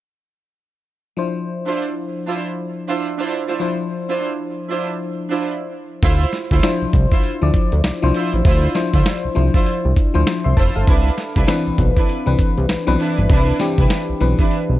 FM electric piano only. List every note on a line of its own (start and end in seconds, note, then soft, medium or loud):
1.17 3.56 F3 medium
1.17 3.56 D4 medium
1.17 3.56 E4 medium
1.17 3.57 C5 medium
3.59 5.98 F3 medium
3.59 5.99 D4 medium
3.59 5.99 E4 medium
3.59 5.99 C5 medium
6.63 7.30 F3 medium
6.63 7.30 D4 medium
6.63 7.30 E4 medium
6.63 7.30 C5 loud
7.42 7.93 F3 medium
7.42 7.93 D4 medium
7.42 7.93 E4 medium
7.42 7.93 D5 medium
8.02 8.67 F3 medium
8.02 8.67 D4 medium
8.02 8.67 E4 medium
8.02 8.68 C5 loud
8.74 9.29 F3 medium
8.74 9.29 D4 medium
8.74 9.29 E4 medium
8.74 9.30 C5 loud
9.35 10.02 F3 medium
9.35 10.02 D4 medium
9.35 10.02 E4 medium
9.35 10.03 C5 medium
10.14 10.65 F3 medium
10.14 10.65 D4 medium
10.14 10.65 E4 medium
10.14 10.27 C5 loud
10.44 10.57 E5 medium
10.44 10.56 C6 medium
10.57 10.75 C5 medium
10.57 10.74 A5 medium
10.76 11.05 A4 medium
10.76 11.04 F5 medium
11.47 12.14 E3 medium
11.47 12.14 C4 medium
11.47 12.14 D4 medium
11.47 12.15 B4 loud
12.26 12.77 E3 medium
12.26 12.77 C4 medium
12.26 12.78 D4 medium
12.26 12.78 B4 medium
12.87 13.52 E3 loud
12.87 13.52 C4 medium
12.87 13.52 D4 medium
12.87 13.52 B4 loud
13.60 14.14 E3 medium
13.60 14.14 C4 medium
13.60 14.14 D4 medium
13.60 14.15 G4 loud
14.20 14.79 E3 medium
14.20 14.79 C4 medium
14.20 14.79 D4 medium
14.20 14.79 B4 medium